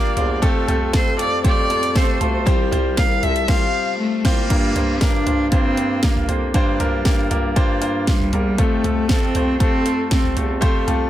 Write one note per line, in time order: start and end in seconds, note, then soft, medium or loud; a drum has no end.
0.00 0.45 G2 medium
0.00 0.17 A#3 loud
0.00 0.17 D4 loud
0.00 0.17 F4 loud
0.00 0.17 G4 loud
0.00 0.45 A#4 loud
0.00 0.31 D5 medium
0.17 0.41 E2 loud
0.17 0.41 A#3 medium
0.17 0.40 D4 medium
0.17 0.41 F4 medium
0.17 0.41 G4 medium
0.17 0.41 C5 medium
0.17 closed hi-hat medium
0.17 floor tom medium
0.42 0.90 F2 loud
0.42 0.66 A3 loud
0.42 0.66 C4 loud
0.42 0.66 F4 loud
0.42 0.66 G4 loud
0.42 0.66 A4 loud
0.42 kick loud
0.42 closed hi-hat medium
0.67 0.91 A3 loud
0.67 0.91 C4 medium
0.67 0.91 F4 medium
0.67 0.91 G4 medium
0.67 0.92 A4 loud
0.67 closed hi-hat medium
0.67 floor tom medium
0.92 1.41 F2 loud
0.92 1.16 A3 medium
0.92 1.16 C4 medium
0.92 1.17 F4 medium
0.92 1.17 G4 medium
0.92 1.17 A4 medium
0.92 1.18 C5 loud
0.92 kick loud
0.92 snare loud
0.92 closed hi-hat medium
1.18 1.42 A3 medium
1.18 1.42 C4 medium
1.18 1.42 F4 medium
1.18 1.42 G4 medium
1.18 1.42 A4 medium
1.18 1.43 D5 loud
1.18 closed hi-hat medium
1.44 2.17 F2 loud
1.44 1.68 A3 loud
1.44 1.68 C4 loud
1.44 1.68 F4 loud
1.44 1.68 G4 loud
1.44 1.68 C5 loud
1.44 1.98 D5 loud
1.44 kick loud
1.44 closed hi-hat loud
1.70 1.94 A3 medium
1.70 1.94 C4 medium
1.70 1.94 F4 medium
1.70 1.94 G4 medium
1.70 1.94 C5 medium
1.70 closed hi-hat medium
1.83 closed hi-hat medium
1.95 2.19 A3 loud
1.95 2.19 C4 loud
1.95 2.19 F4 medium
1.95 2.20 G4 medium
1.95 2.19 A4 loud
1.95 2.34 C5 loud
1.95 kick loud
1.95 snare loud
1.95 closed hi-hat loud
2.21 2.45 D2 medium
2.21 2.45 A3 medium
2.21 2.45 C4 medium
2.21 2.45 F4 medium
2.21 2.45 G4 medium
2.21 2.45 A4 medium
2.21 closed hi-hat medium
2.21 floor tom medium
2.46 2.94 C2 loud
2.46 3.19 C3 medium
2.46 2.70 G3 loud
2.46 2.70 C4 loud
2.46 2.70 F4 loud
2.46 2.70 G4 loud
2.46 2.70 C5 loud
2.46 kick loud
2.46 closed hi-hat medium
2.71 2.95 G3 loud
2.71 2.95 C4 medium
2.71 2.95 F4 medium
2.71 2.95 G4 loud
2.71 2.96 C5 loud
2.71 closed hi-hat medium
2.71 floor tom medium
2.97 3.45 C2 loud
2.97 3.21 G3 medium
2.97 3.21 C4 medium
2.97 3.21 F4 medium
2.97 3.21 G4 medium
2.97 3.21 A#4 medium
2.97 3.25 F5 loud
2.97 kick loud
2.97 snare loud
2.97 closed hi-hat loud
3.23 3.46 G3 medium
3.23 3.47 C4 medium
3.23 3.47 F4 medium
3.23 3.47 G4 medium
3.23 3.47 A4 medium
3.23 3.50 E5 loud
3.23 closed hi-hat medium
3.23 floor tom medium
3.36 closed hi-hat medium
3.48 3.66 C2 loud
3.48 3.65 G3 loud
3.48 3.65 C4 loud
3.48 3.66 F4 loud
3.48 3.66 G4 loud
3.48 3.66 C5 loud
3.48 3.99 F5 loud
3.48 kick loud
3.48 snare loud
3.48 crash medium
3.99 4.26 A3 medium
4.24 4.42 C2 loud
4.24 4.42 G3 loud
4.24 5.04 A#3 medium
4.24 4.42 C4 loud
4.24 4.42 F4 loud
4.24 4.42 G4 loud
4.24 4.42 C5 loud
4.24 kick loud
4.24 snare loud
4.24 crash medium
4.50 4.98 G2 loud
4.50 5.23 G2 medium
4.50 4.74 A#3 medium
4.50 4.74 D4 medium
4.50 4.74 F4 medium
4.50 4.74 G4 medium
4.50 4.74 A#4 loud
4.50 kick loud
4.50 closed hi-hat medium
4.50 crash medium
4.75 4.99 A#3 medium
4.75 4.99 D4 medium
4.75 4.99 F4 medium
4.75 5.00 G4 medium
4.75 5.00 C5 medium
4.75 closed hi-hat medium
4.75 floor tom medium
5.01 5.49 G2 loud
5.01 5.24 A#3 medium
5.01 5.25 D4 medium
5.01 5.53 D4 loud
5.01 5.25 F4 medium
5.01 5.25 G4 medium
5.01 5.25 A#4 medium
5.01 kick loud
5.01 snare loud
5.01 closed hi-hat medium
5.26 5.50 A#3 medium
5.26 5.50 D4 medium
5.26 5.50 F4 medium
5.26 5.50 G4 medium
5.26 5.50 C5 medium
5.26 closed hi-hat medium
5.26 floor tom medium
5.52 6.25 G2 loud
5.52 5.76 A#3 medium
5.52 6.07 C4 loud
5.52 5.76 D4 medium
5.52 5.76 F4 medium
5.52 5.76 G4 medium
5.52 5.76 C5 loud
5.52 kick loud
5.52 closed hi-hat medium
5.77 6.01 A#3 medium
5.77 6.01 D4 medium
5.77 6.01 F4 medium
5.77 6.02 G4 medium
5.77 6.02 C5 medium
5.77 closed hi-hat medium
6.03 6.26 A#3 medium
6.03 6.42 A#3 medium
6.03 6.27 D4 medium
6.03 6.27 F4 medium
6.03 6.27 G4 medium
6.03 6.27 A#4 medium
6.03 kick loud
6.03 snare loud
6.03 closed hi-hat loud
6.16 floor tom medium
6.28 6.52 F2 medium
6.28 6.52 A#3 medium
6.28 6.52 D4 medium
6.28 6.52 F4 medium
6.28 6.52 G4 medium
6.28 6.53 C5 medium
6.28 closed hi-hat medium
6.28 floor tom medium
6.54 7.02 G2 loud
6.54 7.27 G2 medium
6.54 6.78 A#3 loud
6.54 6.78 D4 loud
6.54 6.78 F4 loud
6.54 6.78 G4 loud
6.54 6.78 C5 loud
6.54 kick loud
6.54 closed hi-hat medium
6.80 7.03 A#3 medium
6.80 7.03 D4 medium
6.80 7.04 F4 medium
6.80 7.03 G4 medium
6.80 7.04 A#4 loud
6.80 closed hi-hat medium
6.80 floor tom medium
7.05 7.53 G2 loud
7.05 7.29 A#3 medium
7.05 7.29 D4 medium
7.05 7.29 F4 medium
7.05 7.29 G4 medium
7.05 7.29 A#4 loud
7.05 kick loud
7.05 snare loud
7.05 closed hi-hat medium
7.30 7.54 A#3 medium
7.30 7.54 D4 medium
7.30 7.54 F4 medium
7.30 7.54 G4 medium
7.30 7.55 A#4 loud
7.30 closed hi-hat medium
7.30 floor tom medium
7.56 8.29 G2 loud
7.56 7.80 A#3 loud
7.56 7.80 D4 loud
7.56 7.80 F4 loud
7.56 7.80 G4 loud
7.56 7.80 C5 loud
7.56 kick loud
7.56 closed hi-hat medium
7.82 8.05 A#3 medium
7.82 8.05 D4 medium
7.82 8.06 F4 medium
7.82 8.06 G4 medium
7.82 8.06 C5 loud
7.82 closed hi-hat medium
8.07 8.60 G3 medium
8.07 8.31 A#3 medium
8.07 8.31 D4 medium
8.07 8.31 F4 medium
8.07 8.31 G4 medium
8.07 8.31 C5 medium
8.07 kick loud
8.07 snare loud
8.07 closed hi-hat loud
8.20 floor tom medium
8.33 8.57 E2 medium
8.33 8.57 A#3 medium
8.33 8.57 D4 medium
8.33 8.57 F4 medium
8.33 8.57 G4 medium
8.33 8.57 A#4 medium
8.33 closed hi-hat medium
8.33 floor tom medium
8.58 9.06 F2 loud
8.58 8.82 A3 loud
8.58 9.12 A3 loud
8.58 8.82 C4 medium
8.58 8.82 F4 medium
8.58 8.82 G4 medium
8.58 8.82 A4 loud
8.58 kick loud
8.58 closed hi-hat medium
8.84 9.08 A3 medium
8.84 9.08 C4 medium
8.84 9.08 F4 medium
8.84 9.08 G4 medium
8.84 9.08 A4 medium
8.84 closed hi-hat medium
8.84 floor tom medium
9.09 9.57 F2 loud
9.09 9.33 A3 medium
9.09 9.33 C4 medium
9.09 9.61 C4 loud
9.09 9.33 F4 medium
9.09 9.33 G4 medium
9.09 9.33 A4 medium
9.09 kick loud
9.09 snare loud
9.09 closed hi-hat medium
9.35 9.58 A3 medium
9.35 9.59 C4 medium
9.35 9.59 F4 medium
9.35 9.59 G4 medium
9.35 9.59 C5 medium
9.35 closed hi-hat medium
9.35 floor tom medium
9.60 10.07 F2 loud
9.60 9.84 A3 loud
9.60 9.84 C4 medium
9.60 10.08 C4 loud
9.60 9.84 F4 medium
9.60 9.84 G4 medium
9.60 9.84 A4 loud
9.60 kick loud
9.60 closed hi-hat medium
9.86 10.09 A3 medium
9.86 10.10 C4 medium
9.86 10.09 F4 medium
9.86 10.10 G4 medium
9.86 10.10 A4 medium
9.86 closed hi-hat medium
10.11 10.35 A3 medium
10.11 10.35 C4 medium
10.11 10.47 C4 medium
10.11 10.35 F4 medium
10.11 10.35 G4 medium
10.11 10.35 A4 medium
10.11 kick loud
10.11 snare loud
10.11 closed hi-hat medium
10.24 floor tom medium
10.36 10.61 E2 medium
10.36 10.59 A3 medium
10.36 10.60 C4 medium
10.36 10.60 F4 medium
10.36 10.60 G4 medium
10.36 10.61 A4 medium
10.36 closed hi-hat medium
10.36 floor tom medium
10.61 11.10 F2 loud
10.61 10.85 A3 loud
10.61 10.85 C4 loud
10.61 10.85 F4 loud
10.61 10.85 G4 loud
10.61 10.86 C5 loud
10.61 kick loud
10.61 closed hi-hat medium
10.87 11.10 A3 loud
10.87 11.10 C4 medium
10.87 11.10 F4 medium
10.87 11.10 G4 medium
10.87 11.10 A4 loud
10.87 closed hi-hat medium
10.87 floor tom medium